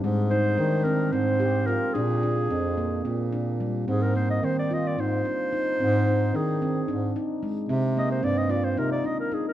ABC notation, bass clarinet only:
X:1
M:7/8
L:1/8
Q:1/4=110
K:Ablyd
V:1 name="Bass clarinet" clef=bass
A,,2 E,2 A,,3 | B,,2 F,,2 B,,3 | A,,2 E,2 A,, z2 | A,,2 E,2 A,, z2 |
C,2 G,,2 C, z2 |]